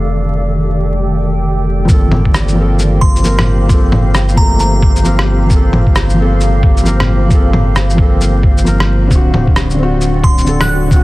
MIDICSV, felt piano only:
0, 0, Header, 1, 2, 480
1, 0, Start_track
1, 0, Key_signature, -2, "minor"
1, 0, Tempo, 451128
1, 95, Time_signature, 4, 2, 24, 8
1, 11742, End_track
2, 0, Start_track
2, 0, Title_t, "Felt piano"
2, 0, Program_c, 0, 0
2, 0, Control_c, 0, 64, 127
2, 0, Note_on_c, 0, 51, 69
2, 0, Note_on_c, 0, 57, 66
2, 0, Note_on_c, 0, 62, 65
2, 0, Note_on_c, 0, 67, 78
2, 1968, Note_off_c, 0, 51, 0
2, 1968, Note_on_c, 0, 53, 89
2, 1983, Note_off_c, 0, 57, 0
2, 1996, Note_off_c, 0, 62, 0
2, 1996, Note_on_c, 0, 58, 82
2, 2010, Note_off_c, 0, 67, 0
2, 2025, Control_c, 0, 64, 0
2, 2025, Note_on_c, 0, 60, 82
2, 2051, Note_on_c, 0, 69, 99
2, 2222, Control_c, 0, 64, 127
2, 2671, Note_off_c, 0, 53, 0
2, 2687, Note_on_c, 0, 53, 88
2, 2699, Note_off_c, 0, 58, 0
2, 2715, Note_on_c, 0, 58, 81
2, 2718, Note_off_c, 0, 60, 0
2, 2731, Note_off_c, 0, 69, 0
2, 2746, Note_on_c, 0, 60, 79
2, 2772, Note_on_c, 0, 69, 97
2, 3409, Note_off_c, 0, 53, 0
2, 3423, Note_off_c, 0, 58, 0
2, 3428, Note_on_c, 0, 53, 91
2, 3438, Note_off_c, 0, 60, 0
2, 3443, Note_on_c, 0, 58, 84
2, 3452, Note_off_c, 0, 69, 0
2, 3456, Note_on_c, 0, 60, 82
2, 3471, Note_on_c, 0, 70, 98
2, 3874, Note_off_c, 0, 53, 0
2, 3890, Note_on_c, 0, 53, 89
2, 3902, Note_off_c, 0, 58, 0
2, 3913, Note_off_c, 0, 60, 0
2, 3918, Note_on_c, 0, 58, 82
2, 3921, Note_off_c, 0, 70, 0
2, 3945, Note_on_c, 0, 60, 82
2, 3976, Note_on_c, 0, 69, 95
2, 4596, Note_off_c, 0, 53, 0
2, 4612, Note_on_c, 0, 53, 89
2, 4622, Note_off_c, 0, 58, 0
2, 4638, Note_off_c, 0, 60, 0
2, 4638, Note_on_c, 0, 58, 81
2, 4654, Note_off_c, 0, 69, 0
2, 4668, Note_on_c, 0, 60, 82
2, 4697, Note_on_c, 0, 57, 100
2, 5331, Note_off_c, 0, 53, 0
2, 5344, Note_off_c, 0, 58, 0
2, 5352, Note_on_c, 0, 53, 92
2, 5359, Note_off_c, 0, 60, 0
2, 5366, Note_on_c, 0, 58, 86
2, 5374, Note_off_c, 0, 57, 0
2, 5380, Note_on_c, 0, 60, 86
2, 5397, Note_on_c, 0, 70, 100
2, 5796, Note_off_c, 0, 53, 0
2, 5812, Note_on_c, 0, 53, 90
2, 5825, Note_off_c, 0, 58, 0
2, 5835, Note_off_c, 0, 60, 0
2, 5841, Note_on_c, 0, 58, 84
2, 5844, Note_off_c, 0, 70, 0
2, 5872, Note_on_c, 0, 60, 81
2, 5897, Note_on_c, 0, 69, 98
2, 6515, Note_off_c, 0, 53, 0
2, 6531, Note_on_c, 0, 53, 91
2, 6542, Note_off_c, 0, 58, 0
2, 6558, Note_on_c, 0, 58, 84
2, 6561, Note_off_c, 0, 60, 0
2, 6574, Note_off_c, 0, 69, 0
2, 6588, Note_on_c, 0, 60, 82
2, 6616, Note_on_c, 0, 69, 102
2, 7251, Note_off_c, 0, 53, 0
2, 7265, Note_off_c, 0, 58, 0
2, 7272, Note_on_c, 0, 53, 95
2, 7280, Note_off_c, 0, 60, 0
2, 7288, Note_on_c, 0, 58, 86
2, 7293, Note_off_c, 0, 69, 0
2, 7301, Note_on_c, 0, 60, 85
2, 7316, Note_on_c, 0, 70, 107
2, 7714, Note_off_c, 0, 53, 0
2, 7730, Note_on_c, 0, 53, 90
2, 7742, Note_off_c, 0, 58, 0
2, 7756, Note_off_c, 0, 60, 0
2, 7758, Note_on_c, 0, 58, 82
2, 7763, Note_off_c, 0, 70, 0
2, 7787, Note_on_c, 0, 60, 85
2, 7816, Note_on_c, 0, 69, 101
2, 8432, Note_off_c, 0, 53, 0
2, 8448, Note_on_c, 0, 53, 89
2, 8461, Note_off_c, 0, 58, 0
2, 8477, Note_on_c, 0, 58, 86
2, 8479, Note_off_c, 0, 60, 0
2, 8493, Note_off_c, 0, 69, 0
2, 8503, Note_on_c, 0, 60, 83
2, 8533, Note_on_c, 0, 69, 99
2, 9170, Note_off_c, 0, 53, 0
2, 9184, Note_off_c, 0, 58, 0
2, 9190, Note_on_c, 0, 53, 89
2, 9197, Note_off_c, 0, 60, 0
2, 9202, Note_on_c, 0, 58, 83
2, 9212, Note_off_c, 0, 69, 0
2, 9218, Note_on_c, 0, 60, 83
2, 9233, Note_on_c, 0, 70, 102
2, 9654, Note_on_c, 0, 50, 90
2, 9660, Note_off_c, 0, 53, 0
2, 9667, Note_off_c, 0, 58, 0
2, 9675, Note_off_c, 0, 60, 0
2, 9682, Note_off_c, 0, 70, 0
2, 9695, Note_on_c, 0, 60, 84
2, 9707, Control_c, 0, 64, 0
2, 9739, Note_on_c, 0, 66, 103
2, 9906, Control_c, 0, 64, 127
2, 10353, Note_off_c, 0, 50, 0
2, 10369, Note_on_c, 0, 50, 90
2, 10393, Note_off_c, 0, 60, 0
2, 10413, Note_on_c, 0, 60, 85
2, 10415, Note_off_c, 0, 66, 0
2, 10456, Note_on_c, 0, 66, 104
2, 11090, Note_off_c, 0, 50, 0
2, 11112, Note_off_c, 0, 60, 0
2, 11112, Note_on_c, 0, 50, 92
2, 11131, Note_on_c, 0, 60, 87
2, 11133, Note_off_c, 0, 66, 0
2, 11154, Note_on_c, 0, 69, 101
2, 11558, Note_off_c, 0, 50, 0
2, 11574, Note_on_c, 0, 50, 92
2, 11591, Note_off_c, 0, 60, 0
2, 11602, Note_off_c, 0, 69, 0
2, 11616, Note_on_c, 0, 60, 87
2, 11660, Note_on_c, 0, 66, 101
2, 11742, Note_off_c, 0, 50, 0
2, 11742, Note_off_c, 0, 60, 0
2, 11742, Note_off_c, 0, 66, 0
2, 11742, End_track
0, 0, End_of_file